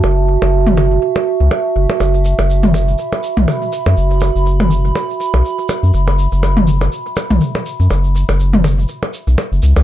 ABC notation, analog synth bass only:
X:1
M:4/4
L:1/16
Q:"Swing 16ths" 1/4=122
K:F#m
V:1 name="Analog synth bass" clef=bass
F,,,3 F,,,4- F,,, z3 C,, z2 F,,, z | F,,,3 F,,,4- F,,, z3 B,,, z3 F,, | F,,,3 F,,,4- F,,, z3 B,,, z3 F,, | F,,,3 F,,,4- F,,, z3 B,,, z3 F,, |
F,,,3 F,,,4- F,,, z3 B,,, z F,,, C,, C,, |]